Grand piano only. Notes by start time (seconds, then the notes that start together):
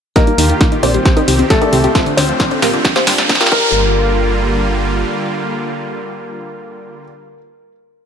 0.16 A#3 A#4
0.83 C4 C5
1.50 A3 A4
2.17 C4 C5
3.52 A#4